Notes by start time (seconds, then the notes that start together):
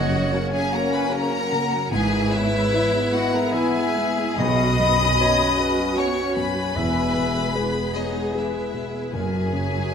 Already playing: F#1 F#2 C#3 A#3 C#4 F#4 C#5 D#5 F#5
0.13 F#3
0.32 C#3 F#3 C#4 A#4 C#5
0.52 F#3 G#4 E5 G#5
0.71 F#3 A#3 A#4 F#5 A#5
0.92 F#3 B4 G#5 B5
1.12 C#3 F#3 C#4 A#4 F#5 A#5
1.33 F#3
1.52 C#3 A#3
1.73 F#3
1.91 G#1 G#2 E3 B3 E4 G#4 B4 E5 G#5
2.13 G#3
2.31 G#3 B3 E4 C#5 E5
2.52 G#3
2.72 E3 B3 E4 B4
2.93 G#3
3.11 B3 F#4 D#5 F#5
3.31 G#3 A#4 F#5 A#5
3.52 E3 B3 E4 G#4 B4 E5 G#5
3.73 G#3
3.95 G#3 B3
4.17 G#3
4.37 B1 B2 C#3 C#4 F#4 D#5 B5 D#6
4.58 F#3
4.78 F#2 B3
4.98 C#4
5.18 B3 C#4 F#4 B4 C#5
5.38 F#3
5.57 C#3 C#4 B4
5.76 F#3
5.96 B3 C#4 F#4 B4 C#5 F#5 C#6
6.17 C#4
6.36 F#2 B3 B4 G#5 B5
6.56 F#3
6.75 E1 E2 E3 B3 G#4 E5
6.96 G#3
7.16 B2 B3
7.36 G#3
7.55 E3 G#3 G#4 B4
7.75 G#3
7.94 G#3 B3 D#4 B4 C#5 D#5
8.14 G#3
8.34 E3 G#3 E4 G#4 B4 E5
8.54 G#3
8.73 B2 B3
8.92 G#3
9.13 F#1 F#2 C#3 C#4 F#4 G#4 A#4 E5 G#5
9.33 F#3
9.53 C#3 A#3 C#5
9.73 F#3